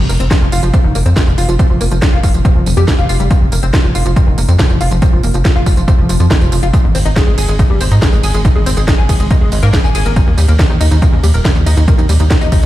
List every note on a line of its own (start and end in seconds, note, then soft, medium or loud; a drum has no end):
0.09 0.18 F1 loud
0.09 0.13 A#3 medium
0.09 open hi-hat loud
0.09 tambourine medium
0.20 0.29 F1 medium
0.20 0.24 C4 medium
0.20 closed hi-hat medium
0.20 tambourine soft
0.31 0.37 F3 medium
0.31 kick loud
0.31 snare loud
0.31 closed hi-hat medium
0.31 tambourine soft
0.41 0.50 F1 medium
0.41 0.47 F3 medium
0.52 0.61 F1 loud
0.52 0.61 F4 medium
0.52 open hi-hat loud
0.52 tambourine medium
0.63 0.72 F1 loud
0.63 0.69 F3 medium
0.63 closed hi-hat medium
0.63 tambourine soft
0.74 0.77 C4 medium
0.74 kick loud
0.74 closed hi-hat medium
0.74 tambourine soft
0.84 0.93 F1 medium
0.84 0.93 D#3 medium
0.95 1.04 F1 loud
0.95 0.99 A#3 medium
0.95 open hi-hat loud
0.95 tambourine medium
1.06 1.14 F2 medium
1.06 1.09 C4 medium
1.06 closed hi-hat medium
1.06 tambourine soft
1.16 1.22 F3 medium
1.16 kick loud
1.16 snare loud
1.16 closed hi-hat medium
1.16 tambourine soft
1.27 1.36 F1 medium
1.27 1.33 F3 medium
1.27 tambourine soft
1.38 1.46 F1 loud
1.38 1.47 F4 medium
1.38 open hi-hat loud
1.38 tambourine medium
1.49 1.57 F1 medium
1.49 1.54 F3 medium
1.49 closed hi-hat medium
1.49 tambourine soft
1.59 1.63 C4 medium
1.59 kick loud
1.59 closed hi-hat medium
1.59 tambourine soft
1.70 1.79 F1 medium
1.70 1.79 F3 medium
1.81 1.89 F1 loud
1.81 1.84 A#3 medium
1.81 open hi-hat loud
1.81 tambourine medium
1.91 2.00 F1 medium
1.91 1.95 F3 medium
1.91 closed hi-hat medium
1.91 tambourine soft
2.02 2.08 F3 medium
2.02 kick loud
2.02 snare loud
2.02 closed hi-hat medium
2.13 2.21 F1 medium
2.13 2.19 F4 medium
2.23 2.32 F1 loud
2.23 2.32 F4 medium
2.23 kick medium
2.23 open hi-hat loud
2.23 tambourine medium
2.34 2.43 F1 loud
2.34 2.40 F3 medium
2.34 closed hi-hat medium
2.34 tambourine soft
2.45 2.48 C4 medium
2.45 kick loud
2.45 closed hi-hat medium
2.45 tambourine soft
2.56 2.64 F1 medium
2.56 2.64 F3 medium
2.66 2.75 F1 loud
2.66 2.75 F2 medium
2.66 open hi-hat loud
2.66 tambourine medium
2.77 2.86 F2 medium
2.77 2.83 G3 loud
2.77 closed hi-hat medium
2.77 tambourine soft
2.88 2.94 F3 medium
2.88 kick loud
2.88 snare loud
2.88 closed hi-hat medium
2.88 tambourine soft
2.98 3.07 F1 medium
2.98 3.04 F4 medium
2.98 tambourine soft
3.09 3.18 F1 loud
3.09 3.18 F4 medium
3.09 open hi-hat loud
3.09 tambourine medium
3.20 3.29 F1 medium
3.20 3.29 G3 medium
3.20 closed hi-hat medium
3.20 tambourine soft
3.31 3.34 F3 medium
3.31 kick loud
3.31 closed hi-hat medium
3.31 tambourine soft
3.41 3.50 F1 medium
3.41 3.47 F2 medium
3.52 3.61 F1 loud
3.52 3.56 A#3 medium
3.52 open hi-hat loud
3.52 tambourine medium
3.63 3.71 F1 medium
3.63 3.66 C4 medium
3.63 closed hi-hat medium
3.63 tambourine soft
3.73 3.79 F3 medium
3.73 kick loud
3.73 snare loud
3.73 closed hi-hat medium
3.73 tambourine soft
3.84 3.93 F1 medium
3.84 3.90 F3 medium
3.95 4.04 F1 loud
3.95 4.04 F4 medium
3.95 open hi-hat loud
3.95 tambourine medium
4.06 4.14 F1 medium
4.06 4.12 F3 medium
4.06 closed hi-hat soft
4.06 tambourine soft
4.16 4.20 C4 medium
4.16 kick loud
4.16 closed hi-hat medium
4.16 tambourine soft
4.27 4.36 F1 medium
4.27 4.36 D#3 medium
4.38 4.46 F1 loud
4.38 4.41 A#3 medium
4.38 open hi-hat loud
4.38 tambourine medium
4.48 4.57 F2 medium
4.48 4.52 C4 medium
4.48 closed hi-hat medium
4.48 tambourine soft
4.59 4.65 F3 medium
4.59 kick loud
4.59 snare loud
4.59 closed hi-hat medium
4.59 tambourine soft
4.70 4.79 F1 medium
4.70 4.76 F3 medium
4.70 tambourine soft
4.81 4.89 F1 loud
4.81 4.89 F4 medium
4.81 open hi-hat loud
4.81 tambourine medium
4.91 5.00 F1 medium
4.91 4.97 F3 medium
4.91 closed hi-hat medium
4.91 tambourine soft
5.02 5.06 C4 medium
5.02 kick loud
5.02 closed hi-hat medium
5.02 tambourine soft
5.13 5.21 F1 medium
5.13 5.22 F3 medium
5.23 5.32 F1 loud
5.23 5.27 A#3 medium
5.23 open hi-hat loud
5.23 tambourine medium
5.34 5.43 F1 medium
5.34 5.38 F3 medium
5.34 closed hi-hat medium
5.34 tambourine soft
5.45 5.51 F3 medium
5.45 kick loud
5.45 snare loud
5.45 closed hi-hat medium
5.45 tambourine soft
5.56 5.64 F1 medium
5.56 5.62 F4 medium
5.66 5.75 F1 loud
5.66 5.75 F4 medium
5.66 kick medium
5.66 open hi-hat loud
5.66 tambourine medium
5.77 5.86 F1 loud
5.77 5.83 F3 medium
5.77 closed hi-hat medium
5.77 tambourine soft
5.88 5.91 C4 medium
5.88 kick loud
5.88 closed hi-hat medium
5.88 tambourine soft
5.99 6.07 F1 medium
5.99 6.07 F3 medium
6.09 6.18 F1 loud
6.09 6.15 F3 medium
6.09 open hi-hat loud
6.09 tambourine medium
6.20 6.29 F2 medium
6.20 6.26 F3 medium
6.20 closed hi-hat soft
6.20 tambourine soft
6.31 6.39 D#3 medium
6.31 kick loud
6.31 snare loud
6.31 closed hi-hat medium
6.31 tambourine soft
6.41 6.50 F1 medium
6.41 6.50 F3 medium
6.41 closed hi-hat soft
6.41 tambourine soft
6.52 6.61 F1 loud
6.52 6.56 F3 medium
6.52 open hi-hat loud
6.52 tambourine medium
6.63 6.71 F1 medium
6.63 6.66 F4 medium
6.63 closed hi-hat soft
6.63 tambourine soft
6.74 6.77 G#3 medium
6.74 kick loud
6.74 closed hi-hat medium
6.74 tambourine soft
6.84 6.93 G#1 medium
6.84 6.90 G#2 medium
6.95 7.04 G#1 loud
6.95 6.98 C4 medium
6.95 open hi-hat loud
6.95 ride medium
6.95 tambourine medium
7.05 7.14 G#1 medium
7.05 7.09 D#4 medium
7.05 closed hi-hat medium
7.05 tambourine soft
7.16 7.22 G#3 medium
7.16 kick loud
7.16 snare loud
7.16 closed hi-hat medium
7.16 tambourine soft
7.27 7.36 G#1 medium
7.27 7.33 G#3 medium
7.38 7.46 G#1 loud
7.38 7.47 G#4 medium
7.38 open hi-hat loud
7.38 ride medium
7.38 tambourine medium
7.49 7.57 G#1 medium
7.49 7.54 G#3 medium
7.49 closed hi-hat medium
7.49 tambourine soft
7.59 7.63 D#4 medium
7.59 kick loud
7.59 closed hi-hat medium
7.59 tambourine soft
7.70 7.79 G#1 medium
7.70 7.79 G3 medium
7.81 7.89 G#1 loud
7.81 7.84 C4 medium
7.81 open hi-hat loud
7.81 ride medium
7.81 tambourine medium
7.91 8.00 G#2 medium
7.91 7.95 D#4 medium
7.91 closed hi-hat medium
7.91 tambourine soft
8.02 8.08 G#3 medium
8.02 kick loud
8.02 snare loud
8.02 closed hi-hat medium
8.02 tambourine soft
8.13 8.21 G#1 medium
8.13 8.19 G#3 medium
8.13 tambourine soft
8.23 8.32 G#1 loud
8.23 8.32 G#4 medium
8.23 open hi-hat loud
8.23 ride medium
8.23 tambourine medium
8.34 8.43 G#1 medium
8.34 8.40 G#3 medium
8.34 closed hi-hat soft
8.34 tambourine soft
8.45 8.48 D#4 medium
8.45 kick loud
8.45 closed hi-hat medium
8.45 tambourine soft
8.56 8.64 G#1 medium
8.56 8.64 G#3 medium
8.66 8.75 G#1 loud
8.66 8.70 C4 medium
8.66 open hi-hat loud
8.66 ride medium
8.66 tambourine medium
8.77 8.86 G#1 medium
8.77 8.81 G#3 medium
8.77 closed hi-hat medium
8.77 tambourine soft
8.88 8.94 G#3 medium
8.88 kick loud
8.88 snare loud
8.88 closed hi-hat medium
8.88 tambourine soft
8.98 9.07 G#1 medium
8.98 9.04 G#4 medium
9.09 9.18 G#1 loud
9.09 9.18 G#4 medium
9.09 kick medium
9.09 open hi-hat loud
9.09 ride medium
9.09 tambourine medium
9.20 9.29 G#1 medium
9.20 9.26 G#3 medium
9.20 closed hi-hat medium
9.20 tambourine soft
9.31 9.34 D#4 medium
9.31 kick loud
9.31 closed hi-hat medium
9.31 tambourine soft
9.41 9.50 G#1 medium
9.41 9.50 G#3 medium
9.52 9.61 G#1 loud
9.52 9.61 G#2 medium
9.52 open hi-hat loud
9.52 ride medium
9.52 tambourine medium
9.63 9.71 G#2 medium
9.63 9.69 A#3 loud
9.63 closed hi-hat medium
9.63 tambourine soft
9.73 9.79 G#3 medium
9.73 kick loud
9.73 snare loud
9.73 closed hi-hat medium
9.73 tambourine soft
9.84 9.93 G#1 medium
9.84 9.90 G#4 medium
9.84 tambourine soft
9.95 10.04 G#1 loud
9.95 10.04 G#4 medium
9.95 open hi-hat loud
9.95 ride medium
9.95 tambourine medium
10.06 10.14 G#1 medium
10.06 10.14 A#3 medium
10.06 closed hi-hat medium
10.06 tambourine soft
10.16 10.20 D#3 medium
10.16 kick loud
10.16 closed hi-hat medium
10.16 tambourine soft
10.27 10.33 D#2 medium
10.27 10.36 D#2 medium
10.38 10.46 D#2 loud
10.38 10.41 G3 medium
10.38 open hi-hat loud
10.38 ride medium
10.38 tambourine medium
10.48 10.57 D#2 medium
10.48 10.52 A#3 medium
10.48 closed hi-hat medium
10.48 tambourine soft
10.59 10.65 D#3 medium
10.59 kick loud
10.59 snare loud
10.59 closed hi-hat medium
10.59 tambourine soft
10.70 10.79 D#2 medium
10.70 10.76 D#3 medium
10.81 10.89 D#2 loud
10.81 10.89 D#4 medium
10.81 open hi-hat loud
10.81 ride medium
10.81 tambourine medium
10.91 11.00 D#2 medium
10.91 10.97 D#3 medium
10.91 closed hi-hat medium
10.91 tambourine soft
11.02 11.06 A#3 medium
11.02 kick loud
11.02 closed hi-hat medium
11.02 tambourine soft
11.13 11.21 D#2 medium
11.13 11.22 C#3 medium
11.23 11.32 D#2 loud
11.23 11.27 G3 medium
11.23 open hi-hat loud
11.23 ride medium
11.23 tambourine medium
11.34 11.43 D#1 medium
11.34 11.38 A#3 medium
11.34 closed hi-hat medium
11.34 tambourine soft
11.45 11.51 D#3 medium
11.45 kick loud
11.45 snare loud
11.45 closed hi-hat medium
11.45 tambourine soft
11.55 11.64 D#2 medium
11.55 11.61 D#3 medium
11.55 tambourine soft
11.66 11.75 D#2 loud
11.66 11.75 D#4 medium
11.66 open hi-hat loud
11.66 ride medium
11.66 tambourine medium
11.77 11.86 D#2 medium
11.77 11.83 D#3 medium
11.77 closed hi-hat medium
11.77 tambourine soft
11.88 11.91 A#3 medium
11.88 kick loud
11.88 closed hi-hat medium
11.88 tambourine soft
11.98 12.07 D#2 medium
11.98 12.07 D#3 medium
11.98 closed hi-hat soft
11.98 tambourine soft
12.09 12.18 D#2 loud
12.09 12.13 G3 medium
12.09 open hi-hat loud
12.09 ride medium
12.09 tambourine medium
12.20 12.29 D#2 medium
12.20 12.23 D#3 medium
12.20 closed hi-hat medium
12.20 tambourine soft
12.31 12.36 D#3 medium
12.31 kick loud
12.31 snare loud
12.31 closed hi-hat medium
12.31 tambourine soft
12.41 12.50 D#2 medium
12.41 12.47 D#4 medium
12.41 closed hi-hat soft
12.41 tambourine soft
12.52 12.61 D#2 medium
12.52 12.61 D#4 medium
12.52 kick medium
12.52 open hi-hat loud
12.52 ride medium
12.52 tambourine medium
12.63 closed hi-hat medium
12.63 tambourine soft